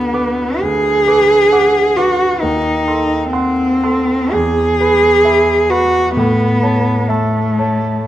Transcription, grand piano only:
0.00 0.58 D2 soft
0.00 0.13 B4 soft
0.00 1.52 F#5 soft
0.00 0.14 D6 soft
0.13 0.58 B4 soft
0.13 0.58 D6 soft
0.61 2.37 D2 soft
1.07 1.49 B4 soft
1.07 1.49 D6 soft
1.52 1.93 F#5 soft
1.52 1.93 D6 soft
1.98 2.38 B4 soft
1.98 2.38 D6 soft
2.42 4.29 D#2 soft
2.88 3.29 A4 soft
2.88 3.30 C6 soft
3.33 3.78 F#5 soft
3.33 3.79 C6 soft
3.83 4.29 A4 soft
3.83 4.29 C6 soft
4.33 6.13 E2 soft
4.80 5.21 B4 soft
4.80 5.22 B5 soft
5.25 5.67 E5 soft
5.25 5.67 B5 soft
5.70 6.12 B4 soft
5.70 6.12 B5 soft
6.17 8.06 A2 soft
6.63 7.06 C#5 soft
6.63 7.06 A5 soft
7.09 7.55 E5 soft
7.09 7.55 A5 soft
7.59 8.06 C#5 soft
7.59 8.06 A5 soft

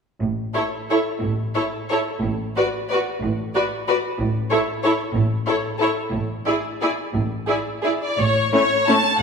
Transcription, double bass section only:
0.22 0.48 A1 soft
1.22 1.48 A1 soft
2.23 2.49 A1 soft
3.23 3.48 A1 medium
4.20 4.45 A1 medium
5.15 5.41 A1 medium
6.14 6.40 A1 soft
7.16 7.42 A1 soft
8.19 8.46 A1 soft

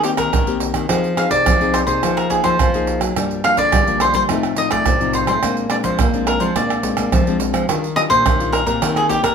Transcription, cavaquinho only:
0.04 0.09 G4 medium
0.18 0.58 A#4 medium
1.18 1.30 F5 medium
1.31 1.75 D5 medium
1.74 1.79 C5 medium
1.87 2.14 C5 medium
2.17 2.29 A#4 medium
2.30 2.45 G#4 medium
2.44 2.84 C5 medium
3.44 3.58 F5 loud
3.58 3.98 D5 medium
4.01 4.13 C5 medium
4.15 4.22 C5 medium
4.58 4.71 D#5 medium
4.72 5.11 D5 loud
5.15 5.27 C5 medium
5.28 5.55 C5 medium
5.70 5.75 D5 medium
5.84 6.24 C5 medium
6.27 6.42 A#4 medium
6.40 6.55 C5 medium
6.56 7.37 D5 medium
7.96 8.01 D#5 loud
8.10 8.54 C5 loud
8.52 8.65 A#4 medium
8.67 8.97 A#4 medium
8.97 9.09 G#4 medium
9.09 9.23 G4 medium
9.24 9.35 A#4 medium

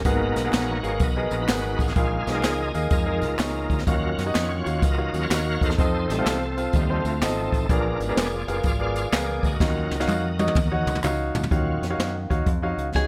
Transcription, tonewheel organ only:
0.05 0.80 A#3 medium
0.05 0.80 B3 soft
0.05 0.97 D#4 medium
0.05 0.54 F#4 medium
0.05 0.50 A#4 loud
0.54 1.01 F#4 medium
0.54 1.45 A#4 medium
0.54 1.03 C#5 loud
1.02 1.32 B3 medium
1.02 1.32 F#4 medium
1.02 1.38 D#5 medium
1.32 1.47 A#3 soft
1.32 1.47 B3 soft
1.32 1.41 F#4 medium
1.42 1.93 D#4 medium
1.42 1.93 F#4 medium
1.42 1.82 B4 loud
1.81 2.28 G#4 medium
1.81 2.29 F5 loud
1.98 2.72 G#3 soft
1.98 2.72 D#4 medium
1.98 2.72 F4 medium
2.28 3.19 G#4 medium
2.28 2.94 D#5 loud
2.92 3.20 G#3 soft
2.92 3.38 D#4 medium
2.92 3.39 F4 medium
2.92 3.37 A#4 medium
3.40 3.84 D#4 medium
3.40 3.84 F4 medium
3.40 3.84 A#4 medium
3.87 4.23 F#3 medium
3.87 4.79 C#4 medium
3.87 4.24 F4 medium
3.87 4.35 F#4 medium
3.87 4.27 A#4 loud
4.29 4.35 D#5 medium
4.35 5.13 F4 medium
4.35 4.83 F#4 medium
4.35 4.84 C#5 medium
4.84 5.22 F#4 medium
4.84 5.75 A#4 medium
4.84 5.24 D#5 medium
5.14 5.29 F#3 soft
5.14 5.29 C#4 soft
5.14 5.29 F4 medium
5.23 5.75 F#4 medium
5.23 5.63 C#5 loud
5.23 5.75 F5 medium
5.63 6.10 D#4 medium
5.63 6.10 A4 medium
5.63 6.11 C5 loud
6.11 6.38 G3 medium
6.11 6.38 A3 medium
6.11 6.75 C4 medium
6.11 6.38 D#4 medium
6.11 6.77 A4 loud
6.75 7.02 G3 soft
6.75 7.66 A3 medium
6.75 7.23 C4 medium
6.75 7.03 D#4 medium
6.75 7.24 F4 medium
7.23 7.67 C4 medium
7.23 7.67 D#4 medium
7.23 7.71 A4 medium
7.70 8.00 D4 medium
7.70 8.18 F4 medium
7.70 8.19 A#4 medium
8.01 8.28 G#3 medium
8.01 8.28 B3 medium
8.01 8.28 D4 medium
8.18 9.09 F4 medium
8.18 8.64 G#4 medium
8.18 8.62 D5 medium
8.65 9.57 G#4 medium
8.65 9.57 D5 medium
8.65 9.14 F5 medium
9.14 9.27 A#4 medium
9.45 11.00 F#4 medium
9.45 11.00 A#4 medium
9.45 11.00 D#5 medium
9.61 9.96 F#3 medium
9.61 9.96 C#4 soft
9.61 9.97 F4 medium
11.51 11.87 F#3 medium
11.51 11.87 C#4 soft
11.51 11.88 F4 medium

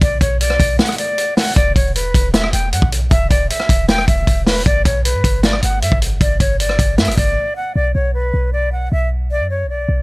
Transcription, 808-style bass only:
0.02 0.20 B1 loud
0.21 0.58 B1 loud
0.60 0.79 B1 loud
1.56 1.75 E1 loud
1.76 2.13 E1 loud
2.14 2.52 E1 loud
2.53 2.74 E1 loud
2.72 2.82 G2 loud
2.82 3.10 B1 loud
3.11 3.30 E1 loud
3.31 3.49 E1 loud
3.69 4.06 E1 loud
4.08 4.26 E1 loud
4.27 4.64 E1 loud
4.66 4.85 G1 loud
4.85 5.16 B1 loud
5.14 5.24 G2 loud
5.24 5.61 G1 loud
5.63 5.84 G1 loud
5.82 5.91 G2 loud
5.92 6.20 G1 loud
6.21 6.39 G1 loud
6.40 6.77 G1 loud
6.79 7.00 G1 loud
6.98 7.09 G2 loud
7.08 7.17 G1 loud
7.17 7.36 G1 loud
7.76 7.94 B1 loud
7.95 8.32 B1 loud
8.34 8.89 B1 loud
8.92 9.42 B1 loud
9.40 9.66 F#2 loud
9.64 9.87 B1 loud
9.89 10.02 B1 loud

